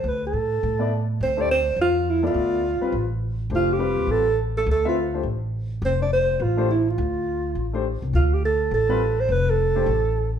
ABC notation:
X:1
M:4/4
L:1/8
Q:"Swing" 1/4=208
K:Ddor
V:1 name="Alto saxophone"
B A6 z | c d c2 F2 E F- | F4- F z3 | F G3 A2 z A |
A F3 z4 | c d c2 F2 E F- | F4- F z3 | F G A2 A3 c |
B A6 z |]
V:2 name="Grand piano"
z4 z [B,EAd] z2 | z [A,DGc] z4 z [B,Ade]- | [B,Ade]2 z [G,CFB] z4 | [A,DGc]2 [G,CFB]3 z3 |
z [CFBe] z [A,DGc] z4 | z4 z [A,DGc] z2 | z4 z [A,DGc] z2 | z4 z [G,CFB] z2 |
z3 [A,DGc] z4 |]
V:3 name="Upright bass" clef=bass
D,,2 A,,2 A,,4 | D,,4 F,,4 | D,,3 z A,,,4 | F,,,3 _E,, A,,,4 |
D,,4 A,,,4 | F,,,4 A,,,4 | D,,4 A,,,3 C,, | D,,4 A,,,4 |
F,,,4 A,,,4 |]